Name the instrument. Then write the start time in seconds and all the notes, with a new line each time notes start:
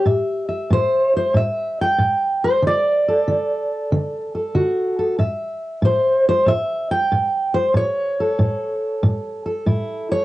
steel-string acoustic guitar
0.05 A2 E5
0.49 E5
0.70 A2 C5
1.17 C5
1.34 A2 E5
1.81 G5
1.98 A2
2.44 C5
2.62 D3
2.67 D5
3.08 A4
3.28 D3
3.92 D3
4.35 A4
4.55 D3 F#4
4.99 A4
5.19 A2 E5
5.82 A2 C5
6.29 C5
6.46 A2 E5
6.91 G5
7.12 A2
7.54 C5
7.74 A2 C#5
8.20 A4
8.39 A2
9.03 A2
9.46 A4
9.66 A2 E4
10.12 C#5